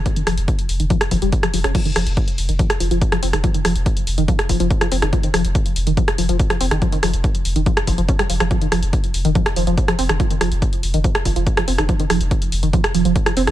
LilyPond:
<<
  \new Staff \with { instrumentName = "Synth arpeggio sound" } { \clef bass \time 4/4 \key c \phrygian \tempo 4 = 142 f16 ees16 f16 r4 ees16 f16 r16 f16 g16 r16 f16 f16 des'16 | f16 ees16 f16 r4 ees16 f16 r16 f16 f16 r16 f16 c'16 ees16 | f16 ees16 f16 r4 ees16 f16 r16 f16 f16 r16 f16 c'16 ees16 | f16 ees16 f16 r4 ees16 f16 r16 f16 f16 r16 f16 c'16 ees16 |
f16 ees16 f16 r4 ees16 f16 r16 f16 f16 des'16 g16 f16 f16 | f16 ees16 f16 r4 ees16 f16 r16 f16 f16 r16 f16 c'16 ees16 | f16 ees16 f16 r4 ees16 f16 r16 f16 f16 r16 f16 c'16 ees16 | f16 ees16 f16 r4 ees16 f16 r16 f16 f16 r16 f16 c'16 ees16 | }
  \new Staff \with { instrumentName = "Sub bass" } { \clef bass \time 4/4 \key c \phrygian r8 f,,16 f,,16 r8 f,,16 f,,16 r8 f,,16 f,,16 r8 f,,16 f,,16 | r8 f,,16 f,,16 r8 f,,16 f,,16 r8 f,,16 f,,16 r8 f,,16 f,,16 | r8 f,,16 f,,16 r8 f,,16 f,,16 r8 f,,16 f,,16 r8 f,,16 f,,16 | r8 f,,16 f,,16 r8 f,,16 f,,16 r8 f,,16 f,,16 r8 f,,16 f,,16 |
r8 f,,16 f,,16 r8 f,,16 f,,16 r8 f,,16 f,,16 r8 f,,16 f,,16 | r8 f,,16 f,,16 r8 f,,16 f,,16 r8 f,,16 f,,16 r8 f,,16 f,,16 | r8 f,,16 f,,16 r8 f,,16 f,,16 r8 f,,16 f,,16 r8 f,,16 f,,16 | r8 f,,16 f,,16 r8 f,,16 f,,16 r8 f,,16 f,,16 r8 f,,16 f,,16 | }
  \new DrumStaff \with { instrumentName = "Drums" } \drummode { \time 4/4 <hh bd>16 hh16 <hho ss>16 hh16 <hh bd>16 hh16 hho16 hh16 <hh bd>16 <hh ss>16 <hho bd>16 hh16 <hh bd>16 <hh ss>16 hho16 <hh ss>16 | <cymc hh bd>16 hh16 <hho ss>16 hh16 <hh bd>16 hh16 hho16 hh16 <hh bd>16 <hh ss>16 hho16 hh16 <hh bd>16 <hh ss>16 hho16 <hh ss>16 | <hh bd>16 hh16 <hho ss>16 hh16 <hh bd>16 hh16 hho16 hh16 <hh bd>16 <hh ss>16 <hho bd>16 hh16 <hh bd>16 <hh ss>16 hho16 <hh ss>16 | <hh bd>16 hh16 <hho ss>16 hh16 <hh bd>16 hh16 hho16 hh16 <hh bd>16 <hh ss>16 hho16 hh16 <hh bd>16 <hh ss>16 hho16 <hh ss>16 |
<hh bd>16 hh16 <hho ss>16 hh16 <hh bd>16 hh16 hho16 hh16 <hh bd>16 <hh ss>16 <hho bd>16 hh16 <hh bd>16 <hh ss>16 hho16 <hh ss>16 | <hh bd>16 hh16 <hho ss>16 hh16 <hh bd>16 hh16 hho16 hh16 <hh bd>16 <hh ss>16 hho16 hh16 <hh bd>16 <hh ss>16 hho16 <hh ss>16 | <hh bd>16 hh16 <hho ss>16 hh16 <hh bd>16 hh16 hho16 hh16 <hh bd>16 <hh ss>16 <hho bd>16 hh16 <hh bd>16 <hh ss>16 hho16 <hh ss>16 | <hh bd>16 hh16 <hho ss>16 hh16 <hh bd>16 hh16 hho16 hh16 <hh bd>16 <hh ss>16 hho16 hh16 <hh bd>16 <hh ss>16 hho16 <hh ss>16 | }
>>